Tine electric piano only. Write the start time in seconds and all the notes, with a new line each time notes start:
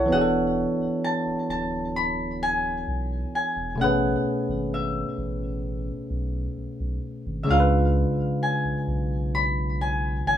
Already playing: E4 A4 C#5 F#5 A5
0.06 E3 B3
0.10 D4 F#4
0.15 G#4
0.22 A4
3.75 B2 A3
3.80 C#4 G#4
3.84 B4
7.44 C#3 G#3
7.49 D4 F4
7.53 A#4
7.60 B4